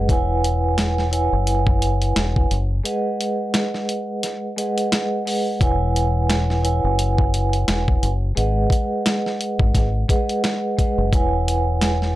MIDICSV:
0, 0, Header, 1, 4, 480
1, 0, Start_track
1, 0, Key_signature, 4, "major"
1, 0, Tempo, 689655
1, 63, Time_signature, 4, 2, 24, 8
1, 8461, End_track
2, 0, Start_track
2, 0, Title_t, "Vibraphone"
2, 0, Program_c, 0, 11
2, 63, Note_on_c, 0, 64, 93
2, 67, Note_on_c, 0, 71, 79
2, 70, Note_on_c, 0, 73, 88
2, 74, Note_on_c, 0, 78, 86
2, 77, Note_on_c, 0, 80, 99
2, 733, Note_off_c, 0, 64, 0
2, 735, Note_off_c, 0, 71, 0
2, 737, Note_off_c, 0, 73, 0
2, 738, Note_off_c, 0, 78, 0
2, 740, Note_off_c, 0, 80, 0
2, 773, Note_on_c, 0, 64, 89
2, 777, Note_on_c, 0, 71, 82
2, 780, Note_on_c, 0, 73, 90
2, 783, Note_on_c, 0, 78, 79
2, 787, Note_on_c, 0, 80, 105
2, 1776, Note_off_c, 0, 64, 0
2, 1778, Note_off_c, 0, 71, 0
2, 1780, Note_off_c, 0, 73, 0
2, 1781, Note_off_c, 0, 78, 0
2, 1783, Note_off_c, 0, 80, 0
2, 1974, Note_on_c, 0, 56, 87
2, 1977, Note_on_c, 0, 68, 76
2, 1980, Note_on_c, 0, 71, 84
2, 1984, Note_on_c, 0, 75, 85
2, 1987, Note_on_c, 0, 78, 93
2, 3095, Note_off_c, 0, 56, 0
2, 3096, Note_off_c, 0, 68, 0
2, 3098, Note_off_c, 0, 71, 0
2, 3100, Note_off_c, 0, 75, 0
2, 3102, Note_off_c, 0, 78, 0
2, 3178, Note_on_c, 0, 56, 91
2, 3181, Note_on_c, 0, 68, 80
2, 3184, Note_on_c, 0, 71, 83
2, 3188, Note_on_c, 0, 75, 80
2, 3191, Note_on_c, 0, 78, 106
2, 3627, Note_off_c, 0, 56, 0
2, 3629, Note_off_c, 0, 68, 0
2, 3631, Note_off_c, 0, 71, 0
2, 3632, Note_off_c, 0, 75, 0
2, 3634, Note_off_c, 0, 78, 0
2, 3657, Note_on_c, 0, 56, 75
2, 3661, Note_on_c, 0, 68, 67
2, 3664, Note_on_c, 0, 71, 74
2, 3667, Note_on_c, 0, 75, 69
2, 3670, Note_on_c, 0, 78, 87
2, 3884, Note_off_c, 0, 56, 0
2, 3885, Note_off_c, 0, 68, 0
2, 3887, Note_off_c, 0, 71, 0
2, 3888, Note_off_c, 0, 75, 0
2, 3890, Note_off_c, 0, 78, 0
2, 3904, Note_on_c, 0, 64, 90
2, 3907, Note_on_c, 0, 71, 78
2, 3910, Note_on_c, 0, 73, 84
2, 3913, Note_on_c, 0, 78, 83
2, 3917, Note_on_c, 0, 80, 101
2, 4573, Note_off_c, 0, 64, 0
2, 4575, Note_off_c, 0, 71, 0
2, 4576, Note_off_c, 0, 73, 0
2, 4578, Note_off_c, 0, 78, 0
2, 4580, Note_off_c, 0, 80, 0
2, 4614, Note_on_c, 0, 64, 91
2, 4617, Note_on_c, 0, 71, 82
2, 4620, Note_on_c, 0, 73, 84
2, 4623, Note_on_c, 0, 78, 79
2, 4627, Note_on_c, 0, 80, 102
2, 5616, Note_off_c, 0, 64, 0
2, 5618, Note_off_c, 0, 71, 0
2, 5620, Note_off_c, 0, 73, 0
2, 5621, Note_off_c, 0, 78, 0
2, 5623, Note_off_c, 0, 80, 0
2, 5812, Note_on_c, 0, 56, 84
2, 5816, Note_on_c, 0, 68, 78
2, 5819, Note_on_c, 0, 71, 87
2, 5823, Note_on_c, 0, 75, 86
2, 5826, Note_on_c, 0, 78, 99
2, 6934, Note_off_c, 0, 56, 0
2, 6936, Note_off_c, 0, 68, 0
2, 6938, Note_off_c, 0, 71, 0
2, 6940, Note_off_c, 0, 75, 0
2, 6941, Note_off_c, 0, 78, 0
2, 7018, Note_on_c, 0, 56, 91
2, 7022, Note_on_c, 0, 68, 82
2, 7025, Note_on_c, 0, 71, 87
2, 7028, Note_on_c, 0, 75, 78
2, 7031, Note_on_c, 0, 78, 105
2, 7467, Note_off_c, 0, 56, 0
2, 7469, Note_off_c, 0, 68, 0
2, 7471, Note_off_c, 0, 71, 0
2, 7472, Note_off_c, 0, 75, 0
2, 7474, Note_off_c, 0, 78, 0
2, 7497, Note_on_c, 0, 56, 75
2, 7500, Note_on_c, 0, 68, 69
2, 7503, Note_on_c, 0, 71, 77
2, 7507, Note_on_c, 0, 75, 71
2, 7510, Note_on_c, 0, 78, 84
2, 7723, Note_off_c, 0, 56, 0
2, 7725, Note_off_c, 0, 68, 0
2, 7727, Note_off_c, 0, 71, 0
2, 7728, Note_off_c, 0, 75, 0
2, 7730, Note_off_c, 0, 78, 0
2, 7744, Note_on_c, 0, 64, 93
2, 7747, Note_on_c, 0, 71, 79
2, 7750, Note_on_c, 0, 73, 87
2, 7754, Note_on_c, 0, 78, 85
2, 7758, Note_on_c, 0, 80, 98
2, 8413, Note_off_c, 0, 64, 0
2, 8415, Note_off_c, 0, 71, 0
2, 8417, Note_off_c, 0, 73, 0
2, 8418, Note_off_c, 0, 78, 0
2, 8420, Note_off_c, 0, 80, 0
2, 8461, End_track
3, 0, Start_track
3, 0, Title_t, "Fingered electric bass"
3, 0, Program_c, 1, 33
3, 65, Note_on_c, 1, 28, 103
3, 892, Note_off_c, 1, 28, 0
3, 924, Note_on_c, 1, 30, 85
3, 1478, Note_off_c, 1, 30, 0
3, 1507, Note_on_c, 1, 28, 95
3, 1707, Note_off_c, 1, 28, 0
3, 1748, Note_on_c, 1, 30, 86
3, 1947, Note_off_c, 1, 30, 0
3, 3905, Note_on_c, 1, 28, 103
3, 4732, Note_off_c, 1, 28, 0
3, 4763, Note_on_c, 1, 30, 84
3, 5318, Note_off_c, 1, 30, 0
3, 5348, Note_on_c, 1, 28, 93
3, 5547, Note_off_c, 1, 28, 0
3, 5587, Note_on_c, 1, 30, 89
3, 5786, Note_off_c, 1, 30, 0
3, 5827, Note_on_c, 1, 32, 100
3, 6026, Note_off_c, 1, 32, 0
3, 6680, Note_on_c, 1, 32, 87
3, 6767, Note_off_c, 1, 32, 0
3, 6786, Note_on_c, 1, 32, 98
3, 6985, Note_off_c, 1, 32, 0
3, 7643, Note_on_c, 1, 30, 83
3, 7746, Note_off_c, 1, 30, 0
3, 7746, Note_on_c, 1, 28, 99
3, 8461, Note_off_c, 1, 28, 0
3, 8461, End_track
4, 0, Start_track
4, 0, Title_t, "Drums"
4, 63, Note_on_c, 9, 36, 116
4, 66, Note_on_c, 9, 42, 89
4, 133, Note_off_c, 9, 36, 0
4, 136, Note_off_c, 9, 42, 0
4, 309, Note_on_c, 9, 42, 77
4, 379, Note_off_c, 9, 42, 0
4, 542, Note_on_c, 9, 40, 89
4, 545, Note_on_c, 9, 42, 93
4, 548, Note_on_c, 9, 38, 112
4, 611, Note_off_c, 9, 40, 0
4, 614, Note_off_c, 9, 42, 0
4, 618, Note_off_c, 9, 38, 0
4, 685, Note_on_c, 9, 38, 34
4, 755, Note_off_c, 9, 38, 0
4, 785, Note_on_c, 9, 42, 75
4, 855, Note_off_c, 9, 42, 0
4, 1024, Note_on_c, 9, 42, 90
4, 1093, Note_off_c, 9, 42, 0
4, 1160, Note_on_c, 9, 36, 98
4, 1229, Note_off_c, 9, 36, 0
4, 1267, Note_on_c, 9, 42, 86
4, 1337, Note_off_c, 9, 42, 0
4, 1403, Note_on_c, 9, 42, 56
4, 1473, Note_off_c, 9, 42, 0
4, 1505, Note_on_c, 9, 40, 95
4, 1507, Note_on_c, 9, 42, 90
4, 1511, Note_on_c, 9, 38, 114
4, 1574, Note_off_c, 9, 40, 0
4, 1577, Note_off_c, 9, 42, 0
4, 1580, Note_off_c, 9, 38, 0
4, 1645, Note_on_c, 9, 36, 100
4, 1714, Note_off_c, 9, 36, 0
4, 1747, Note_on_c, 9, 42, 69
4, 1817, Note_off_c, 9, 42, 0
4, 1987, Note_on_c, 9, 42, 86
4, 2056, Note_off_c, 9, 42, 0
4, 2231, Note_on_c, 9, 42, 78
4, 2301, Note_off_c, 9, 42, 0
4, 2463, Note_on_c, 9, 40, 87
4, 2466, Note_on_c, 9, 42, 95
4, 2469, Note_on_c, 9, 38, 107
4, 2533, Note_off_c, 9, 40, 0
4, 2535, Note_off_c, 9, 42, 0
4, 2539, Note_off_c, 9, 38, 0
4, 2606, Note_on_c, 9, 38, 35
4, 2676, Note_off_c, 9, 38, 0
4, 2707, Note_on_c, 9, 42, 76
4, 2776, Note_off_c, 9, 42, 0
4, 2946, Note_on_c, 9, 42, 87
4, 2951, Note_on_c, 9, 38, 36
4, 3015, Note_off_c, 9, 42, 0
4, 3021, Note_off_c, 9, 38, 0
4, 3189, Note_on_c, 9, 42, 89
4, 3258, Note_off_c, 9, 42, 0
4, 3324, Note_on_c, 9, 42, 57
4, 3394, Note_off_c, 9, 42, 0
4, 3426, Note_on_c, 9, 40, 92
4, 3428, Note_on_c, 9, 42, 91
4, 3432, Note_on_c, 9, 38, 115
4, 3495, Note_off_c, 9, 40, 0
4, 3498, Note_off_c, 9, 42, 0
4, 3502, Note_off_c, 9, 38, 0
4, 3669, Note_on_c, 9, 46, 50
4, 3739, Note_off_c, 9, 46, 0
4, 3903, Note_on_c, 9, 36, 118
4, 3906, Note_on_c, 9, 42, 84
4, 3973, Note_off_c, 9, 36, 0
4, 3976, Note_off_c, 9, 42, 0
4, 4150, Note_on_c, 9, 42, 76
4, 4219, Note_off_c, 9, 42, 0
4, 4382, Note_on_c, 9, 40, 86
4, 4385, Note_on_c, 9, 42, 91
4, 4388, Note_on_c, 9, 38, 113
4, 4451, Note_off_c, 9, 40, 0
4, 4454, Note_off_c, 9, 42, 0
4, 4458, Note_off_c, 9, 38, 0
4, 4525, Note_on_c, 9, 38, 35
4, 4595, Note_off_c, 9, 38, 0
4, 4626, Note_on_c, 9, 42, 77
4, 4696, Note_off_c, 9, 42, 0
4, 4864, Note_on_c, 9, 42, 89
4, 4934, Note_off_c, 9, 42, 0
4, 5000, Note_on_c, 9, 36, 97
4, 5070, Note_off_c, 9, 36, 0
4, 5108, Note_on_c, 9, 42, 85
4, 5178, Note_off_c, 9, 42, 0
4, 5243, Note_on_c, 9, 42, 54
4, 5312, Note_off_c, 9, 42, 0
4, 5345, Note_on_c, 9, 40, 91
4, 5348, Note_on_c, 9, 42, 90
4, 5351, Note_on_c, 9, 38, 116
4, 5415, Note_off_c, 9, 40, 0
4, 5417, Note_off_c, 9, 42, 0
4, 5421, Note_off_c, 9, 38, 0
4, 5485, Note_on_c, 9, 36, 94
4, 5554, Note_off_c, 9, 36, 0
4, 5589, Note_on_c, 9, 42, 70
4, 5658, Note_off_c, 9, 42, 0
4, 5827, Note_on_c, 9, 42, 84
4, 5897, Note_off_c, 9, 42, 0
4, 6055, Note_on_c, 9, 36, 95
4, 6072, Note_on_c, 9, 42, 80
4, 6125, Note_off_c, 9, 36, 0
4, 6142, Note_off_c, 9, 42, 0
4, 6304, Note_on_c, 9, 40, 85
4, 6307, Note_on_c, 9, 42, 95
4, 6310, Note_on_c, 9, 38, 106
4, 6374, Note_off_c, 9, 40, 0
4, 6377, Note_off_c, 9, 42, 0
4, 6380, Note_off_c, 9, 38, 0
4, 6448, Note_on_c, 9, 38, 33
4, 6517, Note_off_c, 9, 38, 0
4, 6547, Note_on_c, 9, 42, 74
4, 6617, Note_off_c, 9, 42, 0
4, 6678, Note_on_c, 9, 36, 98
4, 6748, Note_off_c, 9, 36, 0
4, 6783, Note_on_c, 9, 36, 97
4, 6785, Note_on_c, 9, 42, 91
4, 6791, Note_on_c, 9, 38, 38
4, 6853, Note_off_c, 9, 36, 0
4, 6855, Note_off_c, 9, 42, 0
4, 6861, Note_off_c, 9, 38, 0
4, 7024, Note_on_c, 9, 36, 90
4, 7028, Note_on_c, 9, 42, 85
4, 7093, Note_off_c, 9, 36, 0
4, 7097, Note_off_c, 9, 42, 0
4, 7165, Note_on_c, 9, 42, 54
4, 7234, Note_off_c, 9, 42, 0
4, 7265, Note_on_c, 9, 40, 94
4, 7268, Note_on_c, 9, 42, 90
4, 7271, Note_on_c, 9, 38, 116
4, 7335, Note_off_c, 9, 40, 0
4, 7337, Note_off_c, 9, 42, 0
4, 7341, Note_off_c, 9, 38, 0
4, 7507, Note_on_c, 9, 36, 95
4, 7509, Note_on_c, 9, 42, 69
4, 7576, Note_off_c, 9, 36, 0
4, 7579, Note_off_c, 9, 42, 0
4, 7744, Note_on_c, 9, 36, 119
4, 7747, Note_on_c, 9, 42, 84
4, 7813, Note_off_c, 9, 36, 0
4, 7817, Note_off_c, 9, 42, 0
4, 7991, Note_on_c, 9, 42, 79
4, 8061, Note_off_c, 9, 42, 0
4, 8223, Note_on_c, 9, 40, 87
4, 8226, Note_on_c, 9, 42, 95
4, 8229, Note_on_c, 9, 38, 111
4, 8293, Note_off_c, 9, 40, 0
4, 8296, Note_off_c, 9, 42, 0
4, 8299, Note_off_c, 9, 38, 0
4, 8367, Note_on_c, 9, 38, 33
4, 8436, Note_off_c, 9, 38, 0
4, 8461, End_track
0, 0, End_of_file